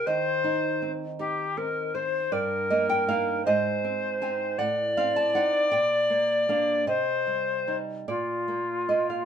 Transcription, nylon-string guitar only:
\new Staff \with { instrumentName = "Nylon-string guitar" } { \time 6/8 \key c \minor \tempo 4. = 53 << { ees''2~ ees''8 r8 | \key bes \mixolydian d''8 ees''16 g''16 f''8 ees''4 aes''8 | ges''8 f''16 a''16 ges''8 g''4 f''8 | ees''4. d''4 ees''16 f''16 | } \\ { ees8 ees'8 c'8 ees'8 c'8 c''8 | g,8 bes8 <bes ees'>8 aes,8 c'8 <c' ees'>8 | a,8 c'8 <c' ees'>8 bes,8 bes8 <bes d'>8 | c8 g8 <g ees'>8 bes,8 bes8 <bes f'>8 | } >> }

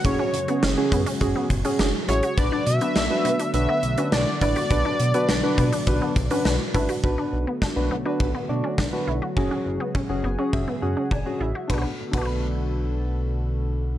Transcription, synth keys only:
\new Staff \with { instrumentName = "Synth keys" } { \time 4/4 \key b \dorian \tempo 4 = 103 << { r1 | r1 | r1 | r1 |
r4. gis''8 e''8 fis''8 gis''8 e''8 | r1 | } \\ { <cis' fis' gis'>8 r16 <cis' fis' gis'>16 r16 <cis' fis' gis'>8 r16 <cis' fis' gis'>8 r16 <cis' fis' gis'>8 r16 <cis' fis' gis'>16 r16 | <d' fis' b'>8 r16 <d' fis' b'>16 r16 <d' fis' b'>8 r16 <d' fis' b'>8 r16 <d' fis' b'>8 r16 <d' fis' b'>16 r16 | <d' fis' b'>8 r16 <d' fis' b'>16 r16 <d' fis' b'>8 r16 <d' fis' b'>8 r16 <d' fis' b'>8 r16 <d' fis' b'>16 r16 | <d' fis' b'>8. r8 <d' fis' b'>16 r16 <d' fis' b'>8 r16 <d' fis' d''>8 r16 <d' fis' b'>8 r16 |
<cis' fis' gis'>8. r8 <cis' fis' gis'>16 r16 <cis' fis' gis'>8 r16 <cis' fis' gis'>8 r16 <cis' fis' gis'>8 r16 | <d' fis' b'>16 r8 <d' fis' b'>2.~ <d' fis' b'>16 | } >> }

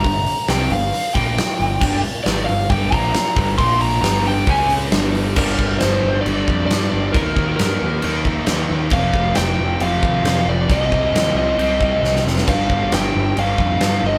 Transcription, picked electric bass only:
\new Staff \with { instrumentName = "Picked electric bass" } { \clef bass \time 4/4 \key g \minor \tempo 4 = 135 g,,8 r8 c,8 g,,8 r8 bes,,8 r8 g,,8 | g,,8 r8 aes,,8 g,,8 g,,8 bes,,8 r8 g,,8 | bes,,4 g,,4 cis,4 g,,4 | g,,8 g,,8 g,,8 g,,8 g,,8 f,8 g,8 g,,8 |
ees,8 ees,8 g,8 ees,8 ees,4 ees,8 ees,8 | f,,8 f,,8 f,,8 f,,8 f,,8 ees,8 f,8 f,,8 | c,8 c,8 ees,8 c,8 c,4 c,8 f,,8 | g,,8 g,,8 g,,8 g,,8 g,,8 f,8 g,8 g,,8 | }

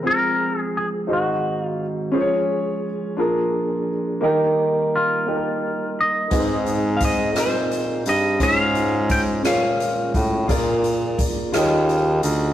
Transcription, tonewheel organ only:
\new Staff \with { instrumentName = "Tonewheel organ" } { \time 6/8 \key aes \major \tempo 4. = 57 <f aes c' aes'>4. <ees aes c' ges'>4. | <f aes des' aes'>4. <f bes d' aes'>4. | <g bes ees' bes'>2. | <c' ees' aes' c''>2. |
<aes des' f' des''>2. | <bes f' aes' d''>4. <des' f' g' aes' ees''>4. | }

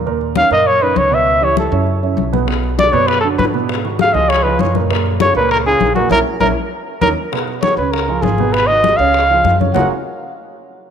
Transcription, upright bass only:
\new Staff \with { instrumentName = "Upright bass" } { \clef bass \time 4/4 \key fis \major \tempo 4 = 198 dis,4. fis,4. cis,4~ | cis,4. fis,4. b,,4~ | b,,4. fis,4. gis,4~ | gis,4. cis,4. fis,4~ |
fis,4. cis,4. ais,,4 | ais,,8 r8 ais,,8 r4. dis,8 r8 | r4. cis,4. gis,,4~ | gis,,4. cis,4. fis,4 |
fis,,8 r2. r8 | }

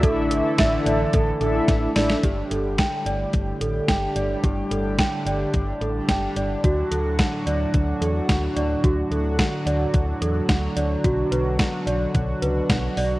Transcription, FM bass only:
\new Staff \with { instrumentName = "FM bass" } { \clef bass \time 4/4 \key g \lydian \tempo 4 = 109 a,,4 a,,8 a,,8 a,,8 a,,8 a,,8 a,,8 | g,,8 g,,8. r16 g,,8 g,,8 a,,8 g,,8 g,,8 | g,,8 g,,8. r16 g,,8 g,,8 a,,8 g,,8 g,,8 | d,8 d,8. r16 d,8 d,8 e,8 d,8 d,8 |
d,8 d,8. r16 d,8 d,8 e,8 d,8 d,8 | b,,8 b,,8. r16 b,,8 b,,8 cis,8 b,,8 b,,8 | }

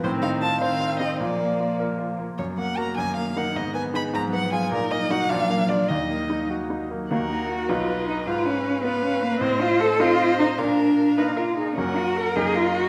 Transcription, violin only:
\new Staff \with { instrumentName = "Violin" } { \time 6/8 \key ees \minor \tempo 4. = 102 c''8 f''8 a''8 f''4 ees''8 | d''4. r4. | des''8 ges''8 bes''8 aes''8 f''8 ges''8 | ees''8 aes''8 ces'''8 bes''8 ges''8 aes''8 |
bes'8 ees''8 ges''8 f''4 d''8 | ees''4. r4. | ges''4. dis''4. | f''4. f''4. |
ees''4. ees''4. | f''2~ f''8 r8 | ges''4. ees''4. | }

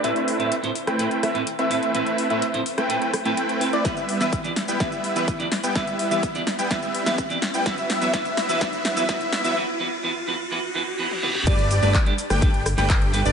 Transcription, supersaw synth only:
\new Staff \with { instrumentName = "Supersaw synth" } { \time 4/4 \key e \minor \tempo 4 = 126 <a c' e' b' e''>8. <a c' e' b' e''>16 r8. <a c' e' b' g''>8. <a c' e' b' e''>16 r8 <a c' e' b' e''>8. | <a c' e' b' e''>8. <a c' e' b' e''>16 r8. <a c' e' b' g''>8. r16 <a c' e' b' g''>4 <a c' e' b' d''>16 | <g b e' b' e''>8. <g b e' b' e''>16 r8. <g b e' b' g''>16 <g b e' b' e''>8. <g b e' b' e''>16 r8. <g b e' b' g''>16 | <g b e' b' e''>8. <g b e' b' e''>16 r8. <g b e' b' g''>16 <g b e' b' e''>8. <g b e' b' e''>16 r8. <g b e' b' g''>16 |
<fis b e' b' e''>8. <fis b e' b' e''>16 <e' b' e''>8. <fis b e' b' e''>16 <fis b e' b' e''>8. <fis b e' b' e''>16 <fis b e' b' e''>8. <fis b e' b' e''>16 | r1 | <a d' g' b' d''>8. <a d' g' b' d''>16 r8. <a d' g' b' g''>8. r16 <a d' g' b' g''>4 <a d' g' b' d''>16 | }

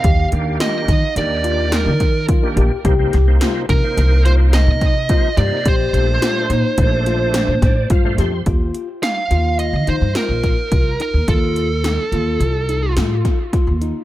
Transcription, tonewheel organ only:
\new Staff \with { instrumentName = "Tonewheel organ" } { \time 5/4 \key ees \lydian \tempo 4 = 107 << { r1 r4 | r1 r4 | r2. r8 d''8 f''8 c'''8 | r1 r4 |
r1 r4 | } \\ { r8 <ees bes d' g'>4 r8 <ees bes d' g'>4~ <ees bes d' g'>16 r4 <ees bes d' g'>8 r16 | <c bes ees' c''>16 <c bes ees' c''>16 r16 <c bes ees' c''>8. r16 <c bes ees' c''>4~ <c bes ees' c''>16 r4 <c bes ees' c''>16 r16 <c bes ees' c''>8 | r8 <bes, a d' c''>4 r8 <bes, a d' c''>4~ <bes, a d' c''>16 r4 <bes, a d' c''>8 r16 | r1 r4 |
r1 r4 | } >> }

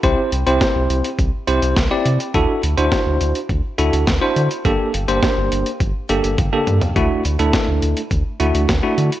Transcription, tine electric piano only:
\new Staff \with { instrumentName = "Tine electric piano" } { \time 4/4 \key d \mixolydian \tempo 4 = 104 <c' e' g' c''>8 r16 <c' e' g' c''>4 r8. <c' e' g' c''>8 r16 <c' e' g' d''>8 r16 | <d' e' fis' a'>8 r16 <d' e' fis' c''>4 r8. <d' e' fis' a'>8 r16 <d' e' fis' c''>8 r16 | <bes d' g' a'>8 r16 <bes d' g' c''>4 r8. <bes d' g' a'>8 r16 <bes d' g' a'>8 r16 | <a d' e' fis'>8 r16 <a d' e' a'>4 r8. <a d' e' fis'>8 r16 <a d' e' fis'>8 r16 | }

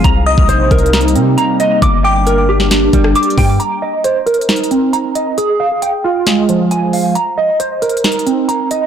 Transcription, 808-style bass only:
\new Staff \with { instrumentName = "808-style bass" } { \clef bass \time 4/4 \key c \minor \tempo 4 = 135 c,8. c,16 bes,,8 c,4 c8 r4 | g,,2~ g,,8 g,,8 r8 g,8 | r1 | r1 |
r1 | }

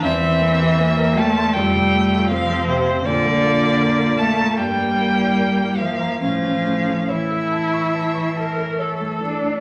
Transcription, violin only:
\new Staff \with { instrumentName = "Violin" } { \time 4/4 \key a \phrygian \tempo 4 = 78 e''4. a''8 g''4 f''8 c''8 | d''4. a''8 g''4. f''8 | f''4 e''2~ e''8 r8 | }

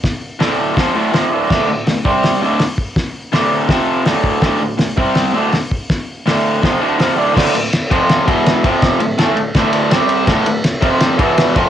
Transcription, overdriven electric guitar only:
\new Staff \with { instrumentName = "Overdriven electric guitar" } { \clef bass \time 4/4 \key d \minor \tempo 4 = 164 r4 <d, a, d>4 <f, c f>8 <d, a, d>8 <f, c f>8 <d, a, d>8 | <d, a, d>8 <d, a,>8 <d, a,>8 <c g c'>4 <d, a, d>8 r4 | r4 <d, a, d>4 <f, c f>4 <d, a, d>4 | <d, a, d>8 <d, a,>8 <d, a,>8 <c g c'>4 <d, a, d>8 r4 |
r4 <d, a, d>4 <f, c f>8 <d, a, d>8 <f, c f>8 <d, a, d>8 | <d, a, d>8 <d, a,>8 r8 <f, c f>4 <e, b, e>4 <f, c f>8~ | <f, c f>8 <d, a,>8 <a, e a>8 <d, a,>8 <d, a, d>4 <c g c'>4 | <d, a, d>8 <d, a,>8 r8 <f, c f>4 <e, b, e>4 <f, c f>8 | }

